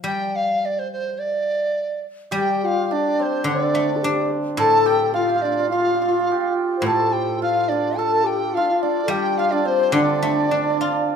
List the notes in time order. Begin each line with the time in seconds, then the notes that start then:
Already playing: F3
0.04 G3 G5
0.35 F5
0.65 D5
0.79 C5
0.92 C5
1.18 D5
2.31 G3 G4
2.36 G4 G5
2.64 F4 F5
2.91 D4 D5
3.19 C4 C5
3.44 D3 D4 D5
3.75 A3
3.96 A4
4.03 D4 G4
4.57 A2 A4 A5
4.86 G4 G5
5.14 F4 F5
5.21 F4
5.29 F4
5.36 F4
5.42 D4 F4 D5
5.52 F4
5.59 F4
5.70 F4 F5
5.80 F4
5.87 F4
5.94 F4
6.02 F4
6.08 F4
6.19 F4
6.32 G4
6.77 C5
6.82 A2 A4
6.86 A4 A5
7.12 G4 G5
7.40 F4 F5
7.68 D4 D5
7.97 A4 A5
8.24 G4 G5
8.54 F4 F5
8.61 D4
8.71 F4
8.78 F5
8.82 D4 D5
9.05 G3 A4
9.10 G4 G5
9.37 F4 F5
9.51 D4 D5
9.65 C4 C5
9.92 D3 D4 D5
10.01 D4
10.09 D4
10.15 D4
10.22 A3 D4
10.33 D4
10.40 D4
10.49 D4
10.56 D4
10.64 D4
10.70 D4
10.77 D4 F4
10.86 D4
10.92 D4